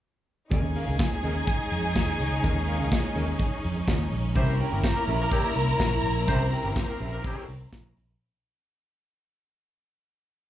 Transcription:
0.50 D#2 G#3 C#4 D#4 G#4 A#4 D#5 G#5, kick, closed hi-hat
0.64 muted clean electric guitar stroke
0.75 C#4 G#4 A#4 F5, open hi-hat
0.87 C#2 C#4 G#4 A#4 F5
0.99 kick, snare, closed hi-hat
1.12 muted clean electric guitar stroke
1.23 D#2 C#4 G#4 A#4 D#5, open hi-hat
1.36 muted clean electric guitar stroke
1.47 muted clean electric guitar stroke, kick, closed hi-hat
1.60 muted clean electric guitar stroke
1.72 F2, open hi-hat
1.84 muted clean electric guitar stroke
1.95 D#2, muted clean electric guitar stroke, kick, snare, closed hi-hat
2.07 muted clean electric guitar stroke
2.20 C#2, open hi-hat
2.31 muted clean electric guitar stroke
2.43 D#2 C#4 G#4 A#4 D#5, kick, closed hi-hat
2.55 muted clean electric guitar stroke
2.67 C#4 G#4 A#4 F5, open hi-hat
2.78 C#2 C#4 G#4 A#4 F5
2.91 muted clean electric guitar stroke, kick, snare, closed hi-hat
3.04 muted clean electric guitar stroke
3.16 D#2 C#4 G#4 A#4 D#5, open hi-hat
3.28 muted clean electric guitar stroke
3.39 muted clean electric guitar stroke, kick, closed hi-hat
3.52 muted clean electric guitar stroke
3.64 F2, open hi-hat
3.76 muted clean electric guitar stroke
3.88 D#2, muted clean electric guitar stroke, kick, snare, closed hi-hat
4.00 muted clean electric guitar stroke
4.12 A#1, open hi-hat
4.24 muted clean electric guitar stroke
4.35 C2 A#3 C4 C#4 E4 G4 A#4 C5 E5 A#5, kick, closed hi-hat
4.47 muted clean electric guitar stroke
4.60 C#4 G4 A#4 G5, open hi-hat
4.72 G1 A#3 C#4 E4 G4 A#4 G5
4.84 C4 E4 G4 C5, muted clean electric guitar stroke, kick, snare, closed hi-hat
4.96 A#3 E4 G4 A#4, muted clean electric guitar stroke
5.07 A#1 C#4 G4 A#4 E5, open hi-hat
5.20 A#3 E4 G4 A#4, muted clean electric guitar stroke
5.31 G3 C#4 E4 G4, muted clean electric guitar stroke, kick, closed hi-hat
5.46 muted clean electric guitar stroke
5.56 C2, open hi-hat
5.69 muted clean electric guitar stroke
5.80 A#1, muted clean electric guitar stroke, kick, snare, closed hi-hat
5.93 muted clean electric guitar stroke
6.04 A#1, open hi-hat
6.16 muted clean electric guitar stroke
6.27 C2 C4 C#4 E4 G4 A#4 C5 E5, kick, closed hi-hat
6.41 muted clean electric guitar stroke
6.52 C#4 G4 A#4 G5, open hi-hat
6.64 G1 A#3 C#4 E4 G4 A#4 G5
6.76 C4 E4 G4 C5, kick, snare, closed hi-hat
6.89 A#3 E4 G4 A#4, muted clean electric guitar stroke
7.00 A#1 C#4 G4 A#4 E5, open hi-hat
7.13 A#3 E4 G4 A#4, muted clean electric guitar stroke
7.24 G3 C#4 E4 G4, muted clean electric guitar stroke, kick, closed hi-hat
7.36 muted clean electric guitar stroke
7.48 C2, open hi-hat
7.62 muted clean electric guitar stroke
7.73 A#1, muted clean electric guitar stroke, kick, snare, closed hi-hat
7.87 muted clean electric guitar stroke
7.97 A#1, open hi-hat
8.11 muted clean electric guitar stroke

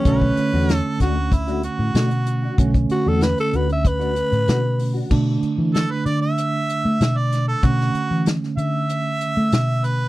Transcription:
Already playing: C#4
0.05 B1 D3 A3 C#4 D4 F#4 B4, kick, closed hi-hat
0.21 muted clean electric guitar stroke, kick
0.37 muted clean electric guitar stroke, closed hi-hat
0.53 E2 A3 D4 F#4
0.69 snare, closed hi-hat
0.75 A4
0.85 muted clean electric guitar stroke
0.99 D2 A3 D4 F#4, kick, snare, closed hi-hat
1.16 muted clean electric guitar stroke
1.31 E4, muted clean electric guitar stroke, kick, closed hi-hat
1.47 A3 D4 F#4, closed hi-hat
1.63 F#4, muted clean electric guitar stroke, closed hi-hat
1.79 A2
1.94 B2 A3 D4 F#4, snare, closed hi-hat
2.10 muted clean electric guitar stroke, closed hi-hat
2.26 muted clean electric guitar stroke, closed hi-hat
2.42 D4 F#4
2.58 B1 D3 A3 C#4, kick, closed hi-hat
2.74 muted clean electric guitar stroke, kick, closed hi-hat
2.89 F#4, muted clean electric guitar stroke, closed hi-hat
3.05 E2 A3 D4 F#4 A4
3.21 B4, snare, closed hi-hat
3.37 A4, muted clean electric guitar stroke, closed hi-hat
3.52 D2 A3 D4 F#4 B4, closed hi-hat
3.69 E5, muted clean electric guitar stroke, closed hi-hat
3.84 B4, muted clean electric guitar stroke, kick, closed hi-hat
3.99 A3 D4 F#4, closed hi-hat
4.15 muted clean electric guitar stroke, closed hi-hat
4.32 A2, closed hi-hat
4.47 B2 A3 D4 F#4, snare, closed hi-hat
4.78 muted clean electric guitar stroke, open hi-hat
4.93 D4 F#4
5.10 B2 D3 A3 D4, kick, crash
5.43 muted fingered electric bass stroke, closed hi-hat
5.58 E3
5.74 A4, snare, closed hi-hat
5.91 B4
6.06 D3 D5, closed hi-hat
6.22 E5
6.38 closed hi-hat
6.69 closed hi-hat
6.85 A3
7.00 B2, snare, closed hi-hat
7.17 D5
7.32 snare, closed hi-hat
7.48 A4
7.63 B2 D3 A3 C#4 F#4, kick, closed hi-hat
7.81 snare
7.94 muted fingered electric bass stroke, closed hi-hat
8.11 E3
8.26 snare, closed hi-hat
8.44 snare
8.57 D3 E5, closed hi-hat
8.89 closed hi-hat
9.21 closed hi-hat
9.37 A3
9.52 B2, snare, closed hi-hat
9.84 B4, closed hi-hat

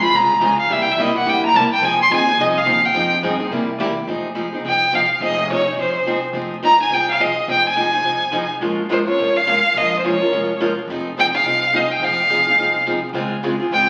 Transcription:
Already playing: A#1
0.01 C4 F4 G#4 B5
0.11 C2 C#3 G#3 C4 F4 G#4
0.16 A#5
0.40 C#2 C#3 G#3 C4 F4 G#4
0.60 F5
0.68 C2 C3 G3 A#3 E4 G4 E5
0.82 G5
0.91 E5
0.96 B1 C3 G3 A#3 E4 G4
1.02 D#5
1.14 A#3 E4 G4 F#5
1.25 A#1 C3 G3 A#3 E4 G4
1.30 G5
1.46 A#5
1.54 C2 C3 G3 A#3 E4 G4 A5
1.73 G5
1.81 F2 F3 C4 D#4 G#4 G#5
2.02 C6
2.09 D#2 F3 C4 D#4 G#4
2.14 G#5
2.27 C4 D#4 G#4
2.38 C2 F3 C4 D#4 G#4 D#5
2.58 F5
2.66 D#2 F3 C4 D#4 G#4
2.85 G5
2.94 F2 F3 C4 D#4 G#4
3.22 G2 F3 C4 D#4 G#4
3.40 C4 D#4 G#4
3.50 C2 C3 G3 A#3 E4 G4
3.78 E2 C3 G3 A#3 E4 G4
4.07 F1 F3 C4 D#4 G#4
4.35 F3 C4 D#4 G#4
4.53 C4 D#4 G#4
4.64 C2 F3 C4 D#4 G#4 G5
4.93 F3 C4 D#4 G#4 F5
5.20 F1 F3 C4 D#4 G#4 D#5
5.50 F3 C4 D#4 G#4 C#5
5.67 C4 D#4 G#4
5.76 C2 F3 C4 D#4 G#4
5.80 C5
6.06 F3 C4 D#4 G#4
6.33 F1 F3 C4 D#4 G#4
6.63 F3 C4 D#4 G#4 A#5
6.80 C4 D#4 G#4 G#5
6.90 C2 F3 C4 D#4 G#4 G5
7.11 F5
7.19 F3 C4 D#4 G#4 D#5
7.47 F1 F3 C4 D#4 G#4 G5
7.69 G#5
7.76 F3 C4 D#4 G#4
7.93 C4 D#4 G#4
8.03 C2 F3 C4 D#4 G#4
8.32 F3 C4 D#4 G#4
8.60 A#1 F3 G#3 C#4 F4 A#4
8.89 F3 G#3 C#4 F4 A#4 C5
9.06 C#4 F4 A#4 C#5
9.18 F1 F3 G#3 C#4 F4 A#4
9.37 F5
9.47 F3 G#3 C#4 F4 A#4
9.74 A#1 F3 G#3 C#4 F4 A#4 D#5
9.99 C5
10.04 F3 G#3 C#4 F4 A#4 C#5
10.21 C#4 F4 A#4
10.32 F1 F3 G#3 C#4 F4 A#4
10.61 F3 G#3 C#4 F4 A#4
10.87 F1 F3 C4 D#4 G#4
11.18 F3 C4 D#4 G#4 G5
11.34 C4 D#4 G#4 F5
11.43 C2 F3 C4 D#4 G#4
11.73 F3 C4 D#4 G#4 D#5
11.91 G5
12.00 F1 F3 C4 D#4 G#4
12.04 F5
12.29 F3 C4 D#4 G#4
12.47 C4 D#4 G#4
12.56 C2 F3 C4 D#4 G#4
12.87 F3 C4 D#4 G#4
13.13 C#2 C#3 G#3 C4 F4 G#4
13.43 C#3 G#3 C4 F4 G#4
13.60 C4 F4 G#4
13.70 G#1 C#3 G#3 C4 F4 G#4 G5

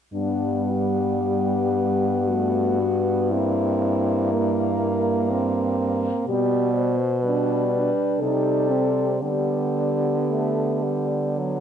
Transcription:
0.13 G2 G3 B3 D4
0.70 G4
2.27 A3 F#4
2.79 B3
3.31 A#3 C4 E4
4.32 A#3
5.30 C4
6.26 B2 G3 B3 G4
6.73 C5
7.22 G3 D4 B4
7.77 D4
8.20 C3 G3 D#4 A4
8.71 C4
9.20 D3 G3 G4
9.24 B3
10.29 A3
10.83 G3
11.38 F#3

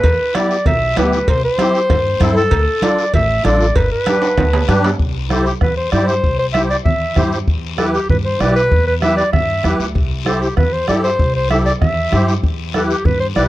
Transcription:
Already playing: B4
0.04 E2, bombo low, cowbell, high conga, long guiro
0.35 B3 E4 G4 D5, bombo rim, cowbell, high conga, short guiro
0.51 short guiro
0.66 B1 E5, bombo low, cowbell, high conga, low conga, long guiro
0.96 D2 B3 E4 G4 B4, bombo rim, cowbell, high conga, low timbale, short guiro
1.13 short guiro
1.28 C2 C5, bombo low, cowbell, high conga, long guiro
1.45 C5
1.58 C4 E4 G4, bombo rim, cowbell, high conga, short guiro
1.75 short guiro
1.90 G2, bombo low, bombo rim, cowbell, high conga, low conga, long guiro
2.20 G2 C4 E4 A4, bombo low, bombo rim, cowbell, high conga, short guiro
2.36 A4, short guiro
2.51 D2, bombo low, cowbell, high conga, long guiro
2.82 D4 F4 A4 D5, bombo rim, cowbell, high conga, short guiro
2.99 short guiro
3.14 A1 E5, bombo low, cowbell, high conga, low conga, long guiro
3.44 A1 D4 F4 A4 D5, bombo rim, cowbell, high conga, short guiro
3.61 short guiro
3.75 G1 B4, bombo low, cowbell, high conga, long guiro
3.92 B4
4.06 D4 G4 B4, bombo rim, cowbell, high conga, short guiro
4.22 high timbale, short guiro
4.38 D2, bombo low, bombo rim, cowbell, high conga, low conga, high timbale, long guiro
4.53 low timbale
4.68 G2 D4 G4 B4, bombo rim, cowbell, high conga, short guiro
4.84 low timbale, short guiro
4.99 C2, bombo low, high conga, long guiro
5.30 E4 G4 A4 C5, bombo rim, high conga, short guiro
5.46 G4, short guiro
5.61 E2 B4, bombo low, bombo rim, high conga, low conga, long guiro
5.77 C5
5.92 G2 E4 G4 C5 D5, bombo rim, high conga, short guiro
6.08 C5, short guiro
6.23 C2, bombo low, high conga, long guiro
6.39 C5
6.54 E4 G4 C5 E5, bombo rim, high conga, short guiro
6.70 D5, short guiro
6.85 E2 E5, bombo low, high conga, low conga, long guiro
7.16 G2 E4 G4 C5, bombo low, bombo rim, high conga, low conga, short guiro
7.32 short guiro
7.47 E2, bombo low, high conga, long guiro
7.78 E4 G4 A4 B4, bombo rim, high conga, short guiro
7.94 G4, short guiro
8.09 G2 B4, bombo low, high conga, low conga, long guiro
8.25 C5
8.40 B1 E4 G4 B4 D5, bombo rim, high conga, short guiro
8.56 B4, short guiro
8.71 E2, bombo low, high conga, long guiro
8.87 B4
9.02 E4 G4 B4 E5, bombo rim, high conga, short guiro
9.17 D5, short guiro
9.32 G2 E5, bombo low, bombo rim, high conga, low conga, long guiro
9.64 E2 E4 G4 B4, bombo rim, high conga, short guiro
9.80 D2, short guiro
9.95 C2, bombo low, high conga, long guiro
10.26 E4 G4 A4 C5, bombo rim, high conga, short guiro
10.42 G4, short guiro
10.57 E2 B4, bombo low, bombo rim, high conga, low conga, long guiro
10.73 C5
10.88 G2 E4 G4 A4 D5, bombo rim, high conga, short guiro
11.04 C5, short guiro
11.19 C2, bombo low, high conga, long guiro
11.35 C5
11.50 E4 G4 A4 E5, bombo rim, high conga, short guiro
11.66 D5, short guiro
11.81 E2 E5, bombo low, bombo rim, high conga, low conga, long guiro
12.12 G2 E4 G4 C5, bombo rim, high conga, short guiro
12.28 short guiro
12.43 E2, bombo low, high conga, long guiro
12.74 E4 G4 A4 B4, bombo rim, high conga, short guiro
12.90 G4, short guiro
13.05 G2 B4, bombo low, high conga, low conga, long guiro
13.20 C5
13.36 B1 E4 G4 B4 D5, bombo rim, high conga, short guiro

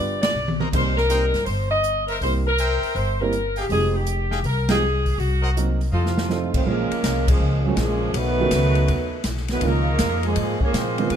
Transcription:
Already playing: G3 B3 D4 F4 B4 D5
0.00 G1
0.21 D5, snare, ride
0.34 B1
0.48 high tom
0.60 A#4 C5 D#5 A#5, high tom
0.72 C2 G3 A#3 C4 D#4 A#4 C5, kick, crash
0.97 A#4, snare
1.09 G3 A#3 C4 D#4 A#4 C5 D#5 G5, closed hi-hat
1.34 G2, snare, open hi-hat
1.44 G1 C5, kick, open hi-hat
1.69 D#5
1.84 closed hi-hat
2.07 A#4 C5 E5 A#5, open hi-hat
2.21 C2 G3 A#3 C4 E4 A#4 C5, kick, open hi-hat
2.46 A#4
2.58 A#4 C5 E5 G5, closed hi-hat
2.83 open hi-hat
2.95 G1 C5, kick, open hi-hat
3.20 G3 A#3 C4 E4 A#4
3.33 closed hi-hat
3.56 G4 G#4 D#5 F5 G5, open hi-hat
3.69 F1 F3 G#3 C4 D#4 G4 G#4, kick, open hi-hat
3.95 G4
4.07 closed hi-hat
4.31 G#4 D#5 F5 G5, snare
4.43 C2 A#4, kick, open hi-hat
4.68 F3 G#3 C4 D#4 G4 G#4 D#5 F5 G5, snare, ride
5.06 kick, open hi-hat
5.18 C2 F#4, kick, open hi-hat
5.42 A#4 C5 D#5 F#5
5.57 F#3 A#3 C4 D#4 A#4, closed hi-hat
5.81 open hi-hat
5.91 F2 A2 C3 F3 F4 A4 C5 D#5 F5
6.06 snare
6.18 snare
6.30 F3 A3 C4 D#4 A4, snare
6.54 A1 D#3 A3 C4 D#4 F4 C5, kick, crash
6.66 A#1 C#3 F3 G#3 A#3 C#4 F4 G#4 A#4, kick
6.91 muted upright bass stroke, ride
7.03 C2, kick, snare, hi-hat pedal, ride
7.28 C#3 F3 G#3 A#3 C#4 G#4, kick, crash
7.40 C#2
7.64 D#3 F3 F#3 G#3 A#3 C4 C#4 F#4 G#4
7.76 A#1 C#3 F3 G#3 A#3 C#4 G#4, kick, snare, hi-hat pedal, ride
8.13 B1 D#3 F#3 B3, kick, ride
8.17 A3 D#4 F#4 B4
8.40 D#3 A3 B3 C#4 F#4
8.51 C#2, kick, snare, hi-hat pedal, ride
8.75 ride
8.88 D#2, kick, ride
9.24 B1, kick, snare, hi-hat pedal, ride
9.37 snare
9.48 D#3 F#3 A3 B3 D#4 F#4 B4, snare, ride
9.61 C#2 A#2 D#3 F3 G#3 A#3 C#4 D#4 F4 A#4, kick, ride
9.99 F2, kick, snare, hi-hat pedal, ride
10.23 A#2 F3 G#3 A#3 D#4 G#4, ride
10.36 G#2, kick, ride
10.60 G#3 A#3 C#4 F4 G#4 C#5, muted upright bass stroke, kick
10.73 A#2 F3 G#3 A#3 C4 F4 G#4 C5, kick, snare, hi-hat pedal, ride
10.98 D#3 F3 G#3 B3 F4, ride
11.10 F2 D#3 G#3 B3 D#4 F4 B4, kick, ride

